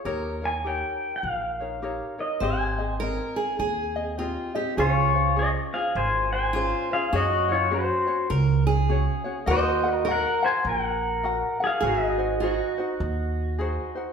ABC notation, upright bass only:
X:1
M:4/4
L:1/8
Q:"Swing" 1/4=102
K:Ab
V:1 name="Upright bass" clef=bass
E,,4 B,,,4 | A,,,4 E,,4 | [K:Db] D,,4 A,,,4 | G,,4 D,,4 |
E,,4 B,,,4 | A,,,4 E,,4 |]